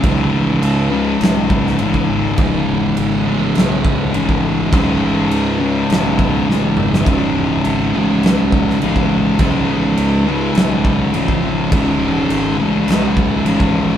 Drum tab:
CC |x---x---x---x---|x---x---x---x---|x---x---x-------|x---x---x---x---|
SD |--------o--o----|--------o-------|--------o---o--o|--------o--o----|
T2 |----------------|----------------|--------------o-|----------------|
BD |o---------o--o--|o---------o--o--|o---------o-----|o---------o--o--|

CC |x---x---x---x---|x---x---x---x---|
SD |--------o-------|--------o-------|
T2 |----------------|----------------|
BD |o---------o--o--|o---------o--o--|